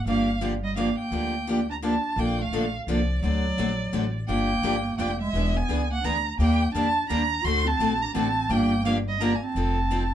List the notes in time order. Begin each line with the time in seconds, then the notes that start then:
0.06 G1 D3 F3 A#3 D4 G4 F5
0.41 D3 F3 A#3 D4 G4
0.62 G3 D#5
0.76 D3 F3 A#3 D4 G4 F5
0.98 A#3 G5
1.11 D2 D3 F3 A#3 D4 G4
1.47 D3 F3 A#3 D4 G4
1.69 D4 A#5
1.82 D3 F3 A#3 D4 G4 A5
2.16 A#1 D3 F3 A#3 D4 A4 G5
2.40 A3 F5
2.51 A#1 D3 F3 A#3 D4 A4
2.87 C2 D3 F3 A#3 D4 A4 D5
3.22 D2 D3 F#3 A3 C4 F#4 A4 D5
3.57 A#1 D3 A3 C4 F#4 A4
3.93 A1 D3 A3 C4 F#4 A4
4.27 G1 D3 F3 A#3 D4 G4 G5
4.63 G1 D3 F3 A#3 D4 G4
4.97 F1 D3 F3 A#3 D4 G4 G5
5.20 G#3 E5
5.33 E1 E3 B3 D4 G#4
5.55 B3 G#5
5.69 C#2 E3 B3 D4 G#4
5.91 A#3 F#5
6.01 D2 E3 B3 D4 A#5
6.06 D4 G#4
6.36 D#2 D#3 G3 A#3
6.40 A#3 D4 G4 G5
6.72 F2 D#3 G3 A#3 D4 A5
6.76 D4 G4
7.07 D#2 D#3 G3 A#3 D4 G4 A#5
7.42 D2 D3 A3 C4 F#4 C6
7.46 A4
7.65 C4 A5
7.79 A#1 D3 A3 C4 F#4 A4
8.01 D4 A#5
8.14 A1 D3 A3 C4 F#4 A4 A5
8.49 G1 D3 F3 A#3 D4 G4 G5
8.84 D3 F3 A#3 D4 G4 F5
9.06 G3 D#5
9.19 D3 F3 A#3 D4 G4 A#5
9.35 A#3 G#5
9.42 C4 A5
9.55 F1 F3 C4 D#4 A4
9.91 F3 C4 D#4 A4